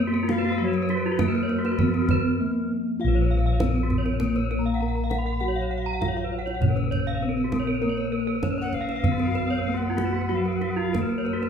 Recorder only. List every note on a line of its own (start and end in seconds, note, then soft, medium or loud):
0.30 0.66 F5 medium
0.64 0.88 C#5 medium
0.88 0.97 C#5 medium
0.95 1.33 B4 medium
1.31 2.75 A#4 medium
8.61 8.76 F#5 medium
8.74 9.79 F5 medium
9.77 10.36 F#5 medium
10.35 10.43 F5 medium
10.42 10.50 F#5 medium
10.48 10.57 F5 medium
10.56 10.65 F#5 medium
10.63 10.72 F5 medium
10.71 10.79 F#5 medium
10.78 11.01 F5 medium
10.99 11.49 A#4 medium